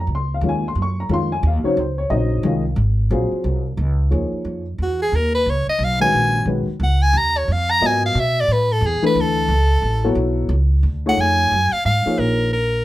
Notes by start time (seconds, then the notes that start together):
0.00 A#5
0.07 C#2
0.15 C6
0.34 F5
0.41 D#2 D#3 G#3 C#4 F4
0.49 G#5
0.68 C6
0.75 F#2
0.82 C#6
1.00 A#5
1.09 F2 D#3 G#3 C#4 F4
1.14 C6
1.32 G#5
1.43 D#2
1.47 F5
1.64 C#3 F#3 C4 D#4 C#5, muted upright bass stroke
1.77 C#2 C5
1.98 C#5
2.10 A#1 C#3 F#3 C4 D#4 D#5
2.43 C2 D#3 G#3 C#4 F4
2.76 G#1
3.10 A#1 F#3 C4 F4 G#4
3.31 muted upright bass stroke
3.44 C2
3.77 C#2
4.10 D#2 F3 A#3 D#4 G#4 C#5
4.32 muted upright bass stroke
4.45 F2
4.78 E2
4.83 F#4
5.02 G#4
5.12 D#2 A#4
5.35 B4
5.46 C#2
5.50 C#5
5.67 D#5, muted upright bass stroke
5.79 B1
5.84 F5
6.00 D#3 G#3 C#4 F#4 B4 G#5
6.12 A#1
6.45 B1 D#3 G#3 C#4 F#4 B4
6.67 muted upright bass stroke
6.80 C#2 F#5
7.02 G#5
7.13 D#2
7.17 A#5
7.37 C#5
7.48 F2
7.52 F5
7.71 A#5
7.81 G#2 F#3 B3 F4 A#4 D#5
7.86 G#5
8.06 F5
8.15 B2
8.20 E5
8.40 D5
8.48 A2
8.53 B4
8.72 A4
8.81 E2
8.87 G#4
9.02 E3 A3 D4 A4 B4, muted upright bass stroke
9.07 B4
9.15 D2
9.21 A4
9.48 C#2
9.82 A1
10.04 F#3 B3 E4 A4 C#5
10.15 B1
10.49 C#2
10.83 D2
11.06 A3 D#4 F4 G#4 C#5 F#5
11.17 F2 G#5
11.52 F#2
11.72 F5, muted upright bass stroke
11.85 G#2 F5
12.06 F3 A#3 D#4 G#4 C#5, muted upright bass stroke
12.18 A#1 A#4
12.53 A#4